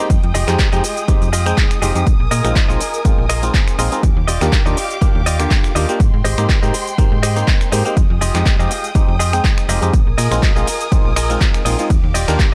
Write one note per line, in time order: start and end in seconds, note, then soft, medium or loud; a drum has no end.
0.00 0.10 G4 medium
0.00 0.10 G#4 medium
0.00 2.03 G5 medium
0.10 0.21 F2 loud
0.10 2.05 G#3 medium
0.10 4.00 D#6 medium
0.10 kick loud
0.10 closed hi-hat medium
0.10 shaker soft
0.23 0.32 F2 loud
0.23 closed hi-hat soft
0.34 0.45 F1 loud
0.34 0.54 F4 medium
0.34 0.54 G4 loud
0.34 0.54 G#4 loud
0.34 0.54 D#5 loud
0.34 open hi-hat loud
0.34 shaker medium
0.47 0.57 F2 loud
0.47 0.69 G#3 medium
0.47 0.69 C4 medium
0.47 0.69 D#4 medium
0.47 0.69 G4 loud
0.47 finger snap medium
0.47 clap soft
0.47 closed hi-hat medium
0.47 shaker soft
0.59 kick loud
0.59 clap loud
0.59 closed hi-hat medium
0.59 shaker soft
0.72 0.81 F2 loud
0.72 0.84 G#3 medium
0.72 0.84 C4 medium
0.72 0.84 D#4 medium
0.72 1.03 F4 medium
0.72 0.84 G4 loud
0.72 1.03 G4 medium
0.72 1.03 G#4 medium
0.72 1.03 D#5 medium
0.72 closed hi-hat soft
0.72 shaker soft
0.84 open hi-hat medium
0.84 shaker medium
0.97 closed hi-hat medium
0.97 shaker soft
1.08 1.28 G#3 medium
1.08 1.29 C4 medium
1.08 1.29 D#4 medium
1.08 1.29 G4 loud
1.08 kick loud
1.08 closed hi-hat medium
1.08 shaker soft
1.22 1.54 F2 loud
1.22 closed hi-hat soft
1.22 shaker soft
1.33 1.46 F4 loud
1.33 1.46 G4 medium
1.33 1.46 G#4 medium
1.33 1.46 D#5 loud
1.33 open hi-hat loud
1.33 shaker medium
1.46 1.79 G#3 medium
1.46 1.79 C4 medium
1.46 1.79 D#4 medium
1.46 1.80 G5 medium
1.46 finger snap medium
1.46 closed hi-hat medium
1.46 shaker soft
1.58 kick loud
1.58 clap loud
1.58 closed hi-hat medium
1.58 shaker soft
1.71 finger snap medium
1.71 closed hi-hat soft
1.71 shaker soft
1.82 1.93 F1 loud
1.82 1.93 G#3 medium
1.82 1.93 C4 medium
1.82 1.94 D#4 medium
1.82 2.07 F4 medium
1.82 1.94 G4 medium
1.82 2.07 G4 medium
1.82 2.07 G#4 medium
1.82 2.07 D#5 medium
1.82 open hi-hat loud
1.82 shaker medium
1.95 2.04 F2 medium
1.95 2.05 G#3 medium
1.95 2.05 C4 medium
1.95 2.06 D#4 medium
1.95 2.06 G4 medium
1.95 closed hi-hat medium
1.95 shaker soft
2.07 2.17 A#1 loud
2.07 4.01 A#4 medium
2.07 4.01 G#5 medium
2.07 kick loud
2.07 closed hi-hat medium
2.07 shaker soft
2.20 2.29 A#1 loud
2.31 2.42 A#2 loud
2.31 2.50 F4 loud
2.31 2.50 G#4 medium
2.31 2.50 A#4 loud
2.31 2.50 D#5 loud
2.31 open hi-hat loud
2.31 shaker medium
2.44 2.54 A#1 loud
2.44 2.66 G#3 medium
2.44 2.66 C4 medium
2.44 2.66 D#4 medium
2.44 2.66 F4 loud
2.44 finger snap medium
2.44 closed hi-hat medium
2.44 shaker soft
2.56 kick loud
2.56 clap loud
2.56 closed hi-hat medium
2.56 shaker soft
2.69 2.78 A#1 loud
2.69 2.80 G#3 medium
2.69 2.81 C4 medium
2.69 2.81 D#4 medium
2.69 2.81 F4 loud
2.69 2.99 F4 medium
2.69 2.99 G#4 medium
2.69 2.99 A#4 medium
2.69 2.99 D#5 loud
2.69 shaker soft
2.81 open hi-hat loud
2.81 shaker medium
2.94 closed hi-hat medium
2.94 shaker soft
3.05 3.16 A#1 soft
3.05 3.25 G#3 medium
3.05 3.25 C4 medium
3.05 3.25 D#4 medium
3.05 3.25 F4 loud
3.05 kick loud
3.05 closed hi-hat medium
3.05 shaker soft
3.18 3.50 A#1 loud
3.29 3.43 F4 loud
3.29 3.43 G#4 medium
3.29 3.43 A#4 loud
3.29 3.43 D#5 loud
3.29 finger snap medium
3.29 open hi-hat loud
3.29 shaker medium
3.42 3.76 G#3 medium
3.42 3.76 C4 medium
3.42 3.76 D#4 medium
3.42 3.76 F4 loud
3.42 closed hi-hat medium
3.42 shaker soft
3.54 kick loud
3.54 clap loud
3.54 closed hi-hat medium
3.54 shaker soft
3.68 finger snap medium
3.68 shaker soft
3.78 3.89 A#1 loud
3.78 3.90 G#3 medium
3.78 3.90 C4 medium
3.78 3.90 D#4 medium
3.78 3.90 F4 medium
3.78 4.04 F4 medium
3.78 4.03 G#4 medium
3.78 4.04 A#4 medium
3.78 4.04 D#5 loud
3.78 open hi-hat loud
3.78 shaker medium
3.92 4.02 G#3 medium
3.92 4.02 C4 medium
3.92 4.02 D#4 medium
3.92 4.02 F4 medium
3.92 closed hi-hat medium
3.92 shaker soft
4.03 4.14 D#2 loud
4.03 5.98 G4 medium
4.03 5.98 F5 medium
4.03 5.98 D6 medium
4.03 kick loud
4.03 closed hi-hat medium
4.03 shaker soft
4.16 4.26 D#2 loud
4.27 4.38 D#1 loud
4.27 4.47 F4 loud
4.27 4.47 G4 loud
4.27 4.47 D5 medium
4.27 4.47 D#5 loud
4.27 open hi-hat loud
4.27 shaker medium
4.41 4.50 D#2 loud
4.41 4.63 A#3 loud
4.41 4.63 D4 medium
4.41 4.63 F4 medium
4.41 4.63 G4 loud
4.41 finger snap medium
4.41 clap soft
4.41 closed hi-hat medium
4.41 shaker soft
4.52 kick loud
4.52 clap loud
4.52 closed hi-hat medium
4.52 shaker soft
4.66 4.75 D#2 loud
4.66 4.77 A#3 medium
4.66 4.77 D4 medium
4.66 4.77 F4 medium
4.66 4.96 F4 medium
4.66 4.96 G4 medium
4.66 4.78 G4 loud
4.66 4.96 D5 medium
4.66 4.96 D#5 loud
4.66 shaker soft
4.77 open hi-hat loud
4.77 shaker medium
4.90 closed hi-hat medium
4.90 shaker soft
5.01 5.22 A#3 medium
5.01 5.22 D4 medium
5.01 5.22 F4 medium
5.01 5.22 G4 loud
5.01 kick loud
5.01 closed hi-hat medium
5.01 shaker soft
5.15 5.47 D#2 loud
5.26 5.40 F4 loud
5.26 5.40 G4 medium
5.26 5.40 D5 loud
5.26 5.40 D#5 loud
5.26 open hi-hat loud
5.26 shaker medium
5.39 5.73 D3 medium
5.39 5.73 A#3 medium
5.39 5.73 F4 medium
5.39 5.73 G4 loud
5.39 finger snap medium
5.39 closed hi-hat medium
5.39 shaker soft
5.51 kick loud
5.51 clap loud
5.51 closed hi-hat medium
5.51 shaker soft
5.64 finger snap medium
5.64 shaker soft
5.75 5.86 D#2 loud
5.75 5.87 A#3 medium
5.75 5.87 D4 medium
5.75 5.87 F4 medium
5.75 6.00 F4 medium
5.75 6.00 G4 medium
5.75 5.87 G4 medium
5.75 6.00 D5 medium
5.75 6.00 D#5 loud
5.75 open hi-hat loud
5.75 shaker medium
5.89 5.99 A#3 medium
5.89 5.99 D4 medium
5.89 5.99 F4 medium
5.89 5.99 G4 medium
5.89 closed hi-hat medium
5.89 shaker soft
6.00 6.11 G#2 loud
6.00 9.89 G#3 medium
6.00 7.95 G5 medium
6.00 7.95 C6 loud
6.00 kick loud
6.00 closed hi-hat medium
6.00 shaker soft
6.14 6.22 G#2 loud
6.24 6.35 G#1 loud
6.24 6.44 G4 medium
6.24 6.44 G#4 medium
6.24 6.44 C5 loud
6.24 6.44 D#5 loud
6.24 open hi-hat loud
6.24 shaker medium
6.38 6.47 G#2 loud
6.38 6.59 A#3 loud
6.38 6.59 C4 medium
6.38 6.60 D#4 medium
6.38 6.60 G4 loud
6.38 finger snap medium
6.38 closed hi-hat medium
6.38 shaker soft
6.49 kick loud
6.49 clap loud
6.49 closed hi-hat medium
6.49 shaker soft
6.62 6.72 G#2 loud
6.62 6.74 A#3 medium
6.62 6.74 C4 medium
6.62 6.74 D#4 medium
6.62 6.74 G4 loud
6.62 6.93 G4 medium
6.62 6.93 G#4 medium
6.62 6.93 C5 medium
6.62 6.93 D#5 loud
6.62 shaker soft
6.74 open hi-hat loud
6.74 shaker medium
6.87 closed hi-hat medium
6.87 shaker soft
6.98 7.09 G#2 soft
6.98 7.19 A#3 medium
6.98 7.19 C4 medium
6.98 7.19 D#4 medium
6.98 7.19 G4 loud
6.98 kick loud
6.98 closed hi-hat medium
6.98 shaker soft
7.12 7.44 G#2 loud
7.23 7.36 G4 loud
7.23 7.36 G#4 loud
7.23 7.36 C5 medium
7.23 7.36 D#5 loud
7.23 finger snap medium
7.23 open hi-hat loud
7.23 shaker medium
7.36 7.69 A#3 medium
7.36 7.69 C4 medium
7.36 7.70 D#4 medium
7.36 7.70 G5 loud
7.36 closed hi-hat medium
7.36 shaker soft
7.48 kick loud
7.48 clap loud
7.48 closed hi-hat medium
7.48 shaker soft
7.61 finger snap medium
7.61 shaker soft
7.72 7.83 G#2 loud
7.72 7.83 A#3 medium
7.72 7.83 C4 medium
7.72 7.83 D#4 medium
7.72 7.84 G4 medium
7.72 7.97 G4 medium
7.72 7.97 G#4 medium
7.72 7.97 C5 medium
7.72 7.97 D#5 loud
7.72 open hi-hat loud
7.72 shaker medium
7.85 7.95 A#3 medium
7.85 7.95 C4 medium
7.85 7.96 D#4 medium
7.85 7.96 G4 medium
7.85 closed hi-hat medium
7.85 shaker soft
7.97 8.07 F2 loud
7.97 9.91 G5 medium
7.97 9.91 D#6 loud
7.97 kick loud
7.97 closed hi-hat medium
7.97 shaker soft
8.10 8.19 F2 loud
8.21 8.32 F1 loud
8.21 8.40 F4 loud
8.21 8.40 G4 medium
8.21 8.40 G#4 loud
8.21 8.40 D#5 loud
8.21 open hi-hat loud
8.21 shaker medium
8.35 8.44 F2 loud
8.35 8.56 G#3 loud
8.35 8.56 C4 medium
8.35 8.56 D#4 medium
8.35 8.56 G4 loud
8.35 finger snap medium
8.35 clap soft
8.35 closed hi-hat medium
8.35 shaker soft
8.46 kick loud
8.46 clap loud
8.46 closed hi-hat medium
8.46 shaker soft
8.59 8.68 F2 loud
8.59 8.71 G#3 loud
8.59 8.71 C4 medium
8.59 8.71 D#4 medium
8.59 8.90 F4 medium
8.59 8.90 G4 medium
8.59 8.71 G4 loud
8.59 8.90 G#4 medium
8.59 8.90 D#5 medium
8.59 shaker soft
8.71 open hi-hat loud
8.71 shaker medium
8.84 closed hi-hat medium
8.84 shaker soft
8.95 9.15 G#3 medium
8.95 9.16 C4 medium
8.95 9.16 D#4 medium
8.95 9.16 G4 loud
8.95 kick loud
8.95 closed hi-hat medium
8.95 shaker soft
9.08 9.41 F2 loud
9.19 9.33 F4 loud
9.19 9.33 G4 medium
9.19 9.33 G#4 loud
9.19 9.33 D#5 loud
9.19 open hi-hat loud
9.19 shaker medium
9.33 9.66 G#3 medium
9.33 9.66 C4 medium
9.33 9.66 D#4 medium
9.33 9.67 G5 loud
9.33 finger snap medium
9.33 closed hi-hat soft
9.33 shaker soft
9.44 kick loud
9.44 clap loud
9.44 closed hi-hat medium
9.44 shaker soft
9.58 finger snap medium
9.58 shaker soft
9.69 9.79 F1 loud
9.69 9.80 G#3 medium
9.69 9.80 C4 medium
9.69 9.80 D#4 medium
9.69 9.94 F4 medium
9.69 9.94 G4 medium
9.69 9.81 G4 medium
9.69 9.94 G#4 medium
9.69 9.94 D#5 loud
9.69 open hi-hat loud
9.69 shaker medium
9.82 9.91 F2 medium
9.82 9.92 G#3 medium
9.82 9.92 C4 medium
9.82 9.92 D#4 medium
9.82 9.92 G4 medium
9.82 closed hi-hat medium
9.82 shaker soft
9.94 10.04 A#1 loud
9.94 11.88 A#4 medium
9.94 11.88 G#5 medium
9.94 11.88 D#6 loud
9.94 kick loud
9.94 closed hi-hat medium
9.94 shaker soft
10.07 10.16 A#1 loud
10.18 10.29 A#2 loud
10.18 10.37 F4 medium
10.18 10.37 G#4 loud
10.18 10.37 A#4 loud
10.18 10.37 D#5 loud
10.18 open hi-hat loud
10.18 ride medium
10.18 shaker medium
10.31 10.40 A#1 loud
10.31 10.53 G#3 medium
10.31 10.53 C4 medium
10.31 10.53 D#4 medium
10.31 10.53 F4 loud
10.31 finger snap medium
10.31 closed hi-hat medium
10.31 shaker soft
10.43 kick loud
10.43 clap loud
10.43 closed hi-hat medium
10.43 shaker soft
10.56 10.65 A#1 medium
10.56 10.67 G#3 medium
10.56 10.67 C4 medium
10.56 10.68 D#4 medium
10.56 10.68 F4 loud
10.56 10.86 F4 medium
10.56 10.86 G#4 medium
10.56 10.86 A#4 medium
10.56 10.86 D#5 loud
10.56 shaker soft
10.67 open hi-hat loud
10.67 ride medium
10.67 shaker medium
10.81 closed hi-hat medium
10.81 shaker soft
10.92 11.03 A#1 soft
10.92 11.12 G#3 loud
10.92 11.12 C4 medium
10.92 11.12 D#4 medium
10.92 11.12 F4 loud
10.92 kick loud
10.92 closed hi-hat medium
10.92 shaker soft
11.05 11.37 A#1 loud
11.16 11.30 F4 loud
11.16 11.30 G#4 medium
11.16 11.30 A#4 loud
11.16 11.30 D#5 loud
11.16 finger snap medium
11.16 open hi-hat loud
11.16 ride medium
11.16 shaker medium
11.30 11.63 G#3 medium
11.30 11.63 C4 medium
11.30 11.63 D#4 medium
11.30 11.63 F4 loud
11.30 closed hi-hat soft
11.30 shaker soft
11.41 kick loud
11.41 clap loud
11.41 closed hi-hat medium
11.41 shaker soft
11.54 finger snap medium
11.54 shaker soft
11.65 11.76 A#1 loud
11.65 11.77 G#3 medium
11.65 11.77 C4 medium
11.65 11.77 D#4 medium
11.65 11.77 F4 medium
11.65 11.90 F4 medium
11.65 11.90 G#4 medium
11.65 11.90 A#4 medium
11.65 11.90 D#5 loud
11.65 open hi-hat loud
11.65 ride medium
11.65 shaker medium
11.79 11.89 G#3 medium
11.79 11.89 C4 medium
11.79 11.89 D#4 medium
11.79 11.89 F4 medium
11.79 closed hi-hat medium
11.79 shaker soft
11.90 12.01 D#2 loud
11.90 12.54 G4 medium
11.90 12.54 F5 medium
11.90 12.54 D6 medium
11.90 kick loud
11.90 closed hi-hat medium
11.90 shaker soft
12.04 12.12 D#2 loud
12.14 12.25 D#1 loud
12.14 12.34 F4 loud
12.14 12.34 G4 loud
12.14 12.34 D5 medium
12.14 12.34 D#5 loud
12.14 open hi-hat loud
12.14 ride medium
12.14 shaker medium
12.28 12.37 D#2 loud
12.28 12.49 A#3 loud
12.28 12.50 D4 medium
12.28 12.50 F4 medium
12.28 12.50 G4 loud
12.28 finger snap medium
12.28 clap soft
12.28 closed hi-hat medium
12.28 shaker soft
12.39 kick loud
12.39 clap loud
12.39 closed hi-hat medium
12.39 shaker soft